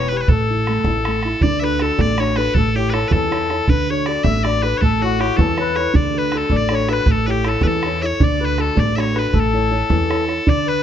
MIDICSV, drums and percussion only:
0, 0, Header, 1, 2, 480
1, 0, Start_track
1, 0, Tempo, 376884
1, 369, Time_signature, 6, 3, 24, 8
1, 13792, End_track
2, 0, Start_track
2, 0, Title_t, "Bodhran"
2, 360, Note_on_c, 9, 64, 85
2, 487, Note_off_c, 9, 64, 0
2, 855, Note_on_c, 9, 64, 63
2, 983, Note_off_c, 9, 64, 0
2, 1075, Note_on_c, 9, 64, 91
2, 1203, Note_off_c, 9, 64, 0
2, 1339, Note_on_c, 9, 64, 82
2, 1467, Note_off_c, 9, 64, 0
2, 1562, Note_on_c, 9, 64, 58
2, 1689, Note_off_c, 9, 64, 0
2, 1797, Note_on_c, 9, 64, 71
2, 1924, Note_off_c, 9, 64, 0
2, 2286, Note_on_c, 9, 64, 59
2, 2413, Note_off_c, 9, 64, 0
2, 2531, Note_on_c, 9, 64, 98
2, 2658, Note_off_c, 9, 64, 0
2, 2775, Note_on_c, 9, 64, 68
2, 2903, Note_off_c, 9, 64, 0
2, 3003, Note_on_c, 9, 64, 50
2, 3130, Note_off_c, 9, 64, 0
2, 3245, Note_on_c, 9, 64, 79
2, 3372, Note_off_c, 9, 64, 0
2, 3741, Note_on_c, 9, 64, 71
2, 3868, Note_off_c, 9, 64, 0
2, 3963, Note_on_c, 9, 64, 100
2, 4090, Note_off_c, 9, 64, 0
2, 4109, Note_on_c, 9, 64, 25
2, 4230, Note_off_c, 9, 64, 0
2, 4230, Note_on_c, 9, 64, 65
2, 4358, Note_off_c, 9, 64, 0
2, 4459, Note_on_c, 9, 64, 54
2, 4586, Note_off_c, 9, 64, 0
2, 4683, Note_on_c, 9, 64, 76
2, 4811, Note_off_c, 9, 64, 0
2, 5170, Note_on_c, 9, 64, 64
2, 5297, Note_off_c, 9, 64, 0
2, 5404, Note_on_c, 9, 64, 96
2, 5532, Note_off_c, 9, 64, 0
2, 5535, Note_on_c, 9, 64, 20
2, 5662, Note_off_c, 9, 64, 0
2, 5663, Note_on_c, 9, 64, 64
2, 5790, Note_off_c, 9, 64, 0
2, 5899, Note_on_c, 9, 64, 42
2, 6026, Note_off_c, 9, 64, 0
2, 6141, Note_on_c, 9, 64, 73
2, 6268, Note_off_c, 9, 64, 0
2, 6631, Note_on_c, 9, 64, 65
2, 6759, Note_off_c, 9, 64, 0
2, 6861, Note_on_c, 9, 64, 96
2, 6979, Note_off_c, 9, 64, 0
2, 6979, Note_on_c, 9, 64, 25
2, 7102, Note_off_c, 9, 64, 0
2, 7102, Note_on_c, 9, 64, 66
2, 7229, Note_off_c, 9, 64, 0
2, 7333, Note_on_c, 9, 64, 55
2, 7461, Note_off_c, 9, 64, 0
2, 7576, Note_on_c, 9, 64, 92
2, 7703, Note_off_c, 9, 64, 0
2, 8048, Note_on_c, 9, 64, 63
2, 8175, Note_off_c, 9, 64, 0
2, 8275, Note_on_c, 9, 64, 90
2, 8403, Note_off_c, 9, 64, 0
2, 8406, Note_on_c, 9, 64, 22
2, 8518, Note_off_c, 9, 64, 0
2, 8518, Note_on_c, 9, 64, 78
2, 8646, Note_off_c, 9, 64, 0
2, 8769, Note_on_c, 9, 64, 60
2, 8896, Note_off_c, 9, 64, 0
2, 8994, Note_on_c, 9, 64, 82
2, 9121, Note_off_c, 9, 64, 0
2, 9482, Note_on_c, 9, 64, 67
2, 9609, Note_off_c, 9, 64, 0
2, 9696, Note_on_c, 9, 64, 94
2, 9823, Note_off_c, 9, 64, 0
2, 9843, Note_on_c, 9, 64, 22
2, 9969, Note_off_c, 9, 64, 0
2, 9969, Note_on_c, 9, 64, 72
2, 10096, Note_off_c, 9, 64, 0
2, 10448, Note_on_c, 9, 64, 91
2, 10575, Note_off_c, 9, 64, 0
2, 10930, Note_on_c, 9, 64, 61
2, 11058, Note_off_c, 9, 64, 0
2, 11171, Note_on_c, 9, 64, 85
2, 11298, Note_off_c, 9, 64, 0
2, 11299, Note_on_c, 9, 64, 21
2, 11426, Note_off_c, 9, 64, 0
2, 11442, Note_on_c, 9, 64, 63
2, 11569, Note_off_c, 9, 64, 0
2, 11666, Note_on_c, 9, 64, 55
2, 11793, Note_off_c, 9, 64, 0
2, 11889, Note_on_c, 9, 64, 66
2, 12016, Note_off_c, 9, 64, 0
2, 12609, Note_on_c, 9, 64, 87
2, 12734, Note_off_c, 9, 64, 0
2, 12734, Note_on_c, 9, 64, 20
2, 12862, Note_off_c, 9, 64, 0
2, 12871, Note_on_c, 9, 64, 66
2, 12998, Note_off_c, 9, 64, 0
2, 13103, Note_on_c, 9, 64, 47
2, 13231, Note_off_c, 9, 64, 0
2, 13335, Note_on_c, 9, 64, 80
2, 13463, Note_off_c, 9, 64, 0
2, 13792, End_track
0, 0, End_of_file